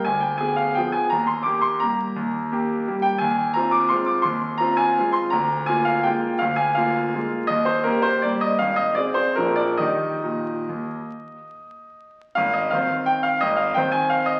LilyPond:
<<
  \new Staff \with { instrumentName = "Grand piano" } { \time 3/4 \key ees \major \tempo 4 = 168 aes''8 g''8 aes''8 f''8 g''8 aes''8 | bes''8 c'''8 d'''8 c'''8 bes''4~ | bes''2~ bes''8 g''8 | aes''4 bes''8 d'''8 c'''8 d'''8 |
c'''4 bes''8 aes''4 c'''8 | bes''4 aes''8 f''8 g''4 | f''8 aes''8 f''4. r8 | ees''8 c''8 bes'8 c''8 d''8 ees''8 |
f''8 ees''8 d''8 c''8 bes'8 d''8 | ees''2.~ | ees''2~ ees''8 r8 | \key aes \major f''8 ees''8 f''4 g''8 f''8 |
ees''8 f''8 g''8 aes''8 f''8 ees''8 | }
  \new Staff \with { instrumentName = "Grand piano" } { \time 3/4 \key ees \major d,4 <b aes'>4 <f b aes'>4 | ees,4 <bes g'>4 <g bes g'>4 | ees,4 <bes g'>4 <g bes g'>4 | ees,4 <c' f'>4 <aes c' f'>4 |
ees,4 <c' f'>4 <aes c' f'>4 | d,4 <bes f'>4 <aes bes f'>4 | d,4 <bes f'>4 <aes bes f'>4 | ees,4 <bes g'>4 <g bes g'>4 |
aes,,4 <c' aes'>4 <bes,, f d' aes'>4 | <ees ees' g'>4 bes,4 ees,4 | r2. | \key aes \major aes,,4 <ees c' c''>2 |
aes,,4 <ees c' c''>2 | }
>>